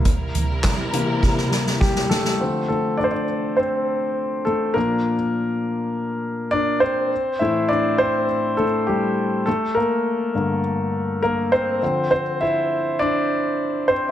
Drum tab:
HH |x-x-x-x---------|----------------|----------------|----------------|
CP |----x-----------|----------------|----------------|----------------|
SD |----o---oooooooo|----------------|----------------|----------------|
FT |--o-------------|----------------|----------------|----------------|
BD |o---o---o---o---|----------------|----------------|----------------|

HH |----------------|----------------|
CP |----------------|----------------|
SD |----------------|----------------|
FT |----------------|----------------|
BD |----------------|----------------|